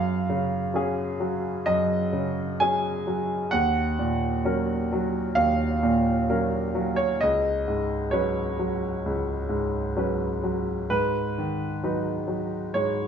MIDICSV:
0, 0, Header, 1, 2, 480
1, 0, Start_track
1, 0, Key_signature, -6, "minor"
1, 0, Tempo, 921659
1, 1829, Time_signature, 4, 2, 24, 8
1, 4704, Tempo, 937500
1, 6774, End_track
2, 0, Start_track
2, 0, Title_t, "Grand piano"
2, 0, Program_c, 0, 0
2, 0, Control_c, 0, 64, 127
2, 0, Note_on_c, 0, 42, 53
2, 0, Note_on_c, 0, 77, 79
2, 154, Note_on_c, 0, 49, 46
2, 385, Note_on_c, 0, 54, 45
2, 391, Note_on_c, 0, 61, 45
2, 394, Note_on_c, 0, 68, 52
2, 525, Note_off_c, 0, 49, 0
2, 597, Note_off_c, 0, 54, 0
2, 600, Note_off_c, 0, 61, 0
2, 601, Note_off_c, 0, 68, 0
2, 626, Note_on_c, 0, 54, 45
2, 836, Note_off_c, 0, 42, 0
2, 855, Note_off_c, 0, 77, 0
2, 864, Note_on_c, 0, 75, 83
2, 867, Note_on_c, 0, 42, 54
2, 1005, Note_off_c, 0, 54, 0
2, 1108, Note_on_c, 0, 49, 46
2, 1351, Note_off_c, 0, 75, 0
2, 1354, Note_on_c, 0, 80, 86
2, 1358, Note_on_c, 0, 54, 42
2, 1363, Note_on_c, 0, 61, 46
2, 1363, Note_on_c, 0, 68, 48
2, 1497, Note_off_c, 0, 49, 0
2, 1574, Note_off_c, 0, 54, 0
2, 1576, Note_off_c, 0, 68, 0
2, 1577, Note_off_c, 0, 61, 0
2, 1599, Note_on_c, 0, 54, 47
2, 1815, Note_off_c, 0, 42, 0
2, 1828, Note_on_c, 0, 78, 92
2, 1833, Note_off_c, 0, 80, 0
2, 1834, Note_off_c, 0, 54, 0
2, 1836, Note_on_c, 0, 39, 60
2, 1837, Control_c, 0, 64, 0
2, 1934, Control_c, 0, 64, 127
2, 2078, Note_on_c, 0, 46, 48
2, 2318, Note_on_c, 0, 61, 43
2, 2320, Note_on_c, 0, 54, 43
2, 2323, Note_on_c, 0, 70, 49
2, 2460, Note_off_c, 0, 46, 0
2, 2534, Note_off_c, 0, 61, 0
2, 2535, Note_off_c, 0, 54, 0
2, 2537, Note_off_c, 0, 70, 0
2, 2565, Note_on_c, 0, 54, 47
2, 2773, Note_off_c, 0, 39, 0
2, 2787, Note_on_c, 0, 77, 90
2, 2791, Note_off_c, 0, 78, 0
2, 2793, Note_on_c, 0, 39, 52
2, 2941, Note_off_c, 0, 54, 0
2, 3036, Note_on_c, 0, 46, 50
2, 3280, Note_on_c, 0, 54, 45
2, 3281, Note_on_c, 0, 70, 49
2, 3284, Note_on_c, 0, 61, 44
2, 3414, Note_off_c, 0, 46, 0
2, 3490, Note_off_c, 0, 54, 0
2, 3490, Note_off_c, 0, 70, 0
2, 3492, Note_off_c, 0, 61, 0
2, 3514, Note_on_c, 0, 54, 52
2, 3621, Note_off_c, 0, 77, 0
2, 3627, Note_on_c, 0, 73, 74
2, 3722, Note_off_c, 0, 39, 0
2, 3744, Note_off_c, 0, 73, 0
2, 3747, Note_off_c, 0, 54, 0
2, 3752, Control_c, 0, 64, 0
2, 3753, Note_on_c, 0, 75, 83
2, 3760, Note_on_c, 0, 37, 51
2, 3842, Control_c, 0, 64, 127
2, 3998, Note_on_c, 0, 44, 43
2, 4224, Note_on_c, 0, 73, 71
2, 4227, Note_off_c, 0, 75, 0
2, 4231, Note_on_c, 0, 54, 43
2, 4234, Note_on_c, 0, 71, 47
2, 4236, Note_on_c, 0, 61, 45
2, 4374, Note_off_c, 0, 44, 0
2, 4445, Note_off_c, 0, 54, 0
2, 4447, Note_off_c, 0, 61, 0
2, 4447, Note_off_c, 0, 71, 0
2, 4475, Note_on_c, 0, 54, 47
2, 4690, Note_off_c, 0, 37, 0
2, 4717, Note_on_c, 0, 37, 45
2, 4851, Note_off_c, 0, 54, 0
2, 4939, Note_on_c, 0, 44, 45
2, 4941, Note_off_c, 0, 73, 0
2, 5182, Note_on_c, 0, 54, 40
2, 5183, Note_on_c, 0, 61, 38
2, 5188, Note_on_c, 0, 71, 40
2, 5322, Note_off_c, 0, 44, 0
2, 5399, Note_off_c, 0, 54, 0
2, 5400, Note_off_c, 0, 61, 0
2, 5402, Note_off_c, 0, 71, 0
2, 5421, Note_on_c, 0, 54, 43
2, 5645, Note_off_c, 0, 37, 0
2, 5660, Note_off_c, 0, 54, 0
2, 5660, Note_on_c, 0, 71, 80
2, 5662, Note_on_c, 0, 44, 50
2, 5665, Control_c, 0, 64, 0
2, 5763, Control_c, 0, 64, 127
2, 5906, Note_on_c, 0, 51, 40
2, 6135, Note_off_c, 0, 71, 0
2, 6139, Note_on_c, 0, 54, 37
2, 6143, Note_on_c, 0, 63, 36
2, 6143, Note_on_c, 0, 71, 40
2, 6283, Note_off_c, 0, 51, 0
2, 6356, Note_off_c, 0, 54, 0
2, 6358, Note_off_c, 0, 63, 0
2, 6358, Note_off_c, 0, 71, 0
2, 6365, Note_on_c, 0, 54, 34
2, 6599, Note_off_c, 0, 44, 0
2, 6603, Note_on_c, 0, 73, 74
2, 6607, Note_on_c, 0, 44, 39
2, 6759, Note_off_c, 0, 54, 0
2, 6774, Note_off_c, 0, 44, 0
2, 6774, Note_off_c, 0, 73, 0
2, 6774, End_track
0, 0, End_of_file